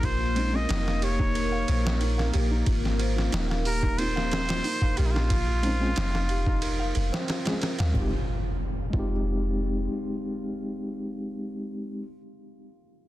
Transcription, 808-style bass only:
0, 0, Header, 1, 2, 480
1, 0, Start_track
1, 0, Key_signature, -4, "minor"
1, 0, Tempo, 659341
1, 22, Time_signature, 4, 2, 24, 8
1, 9523, End_track
2, 0, Start_track
2, 0, Title_t, "808-style bass"
2, 0, Program_c, 0, 38
2, 0, Note_on_c, 0, 34, 82
2, 484, Note_off_c, 0, 34, 0
2, 510, Note_on_c, 0, 29, 95
2, 1204, Note_off_c, 0, 29, 0
2, 1229, Note_on_c, 0, 34, 84
2, 1683, Note_off_c, 0, 34, 0
2, 1709, Note_on_c, 0, 34, 77
2, 1918, Note_off_c, 0, 34, 0
2, 1944, Note_on_c, 0, 32, 99
2, 2401, Note_off_c, 0, 32, 0
2, 2425, Note_on_c, 0, 27, 95
2, 3361, Note_off_c, 0, 27, 0
2, 3631, Note_on_c, 0, 34, 83
2, 4325, Note_off_c, 0, 34, 0
2, 4349, Note_on_c, 0, 29, 95
2, 5044, Note_off_c, 0, 29, 0
2, 5069, Note_on_c, 0, 29, 95
2, 5176, Note_off_c, 0, 29, 0
2, 5675, Note_on_c, 0, 39, 100
2, 5772, Note_off_c, 0, 39, 0
2, 5785, Note_on_c, 0, 29, 94
2, 5922, Note_off_c, 0, 29, 0
2, 6506, Note_on_c, 0, 29, 99
2, 7195, Note_off_c, 0, 29, 0
2, 9523, End_track
0, 0, End_of_file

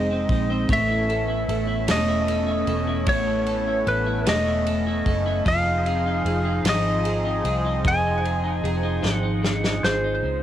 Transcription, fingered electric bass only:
0, 0, Header, 1, 2, 480
1, 0, Start_track
1, 0, Tempo, 795756
1, 415, Time_signature, 6, 3, 24, 8
1, 6291, End_track
2, 0, Start_track
2, 0, Title_t, "Fingered electric bass"
2, 0, Program_c, 0, 33
2, 0, Note_on_c, 0, 29, 83
2, 151, Note_off_c, 0, 29, 0
2, 176, Note_on_c, 0, 34, 93
2, 401, Note_off_c, 0, 34, 0
2, 416, Note_on_c, 0, 33, 108
2, 871, Note_off_c, 0, 33, 0
2, 895, Note_on_c, 0, 33, 97
2, 1120, Note_off_c, 0, 33, 0
2, 1133, Note_on_c, 0, 28, 85
2, 1589, Note_off_c, 0, 28, 0
2, 1612, Note_on_c, 0, 28, 98
2, 1854, Note_off_c, 0, 28, 0
2, 1854, Note_on_c, 0, 33, 106
2, 2309, Note_off_c, 0, 33, 0
2, 2333, Note_on_c, 0, 33, 101
2, 2558, Note_off_c, 0, 33, 0
2, 2573, Note_on_c, 0, 28, 99
2, 3028, Note_off_c, 0, 28, 0
2, 3053, Note_on_c, 0, 30, 103
2, 3278, Note_off_c, 0, 30, 0
2, 3293, Note_on_c, 0, 29, 107
2, 3748, Note_off_c, 0, 29, 0
2, 3768, Note_on_c, 0, 29, 92
2, 3996, Note_off_c, 0, 29, 0
2, 4008, Note_on_c, 0, 32, 93
2, 4466, Note_off_c, 0, 32, 0
2, 4489, Note_on_c, 0, 36, 97
2, 4716, Note_off_c, 0, 36, 0
2, 4734, Note_on_c, 0, 29, 97
2, 5190, Note_off_c, 0, 29, 0
2, 5210, Note_on_c, 0, 29, 98
2, 5438, Note_off_c, 0, 29, 0
2, 5453, Note_on_c, 0, 32, 105
2, 5910, Note_off_c, 0, 32, 0
2, 5931, Note_on_c, 0, 32, 87
2, 6159, Note_off_c, 0, 32, 0
2, 6169, Note_on_c, 0, 37, 82
2, 6291, Note_off_c, 0, 37, 0
2, 6291, End_track
0, 0, End_of_file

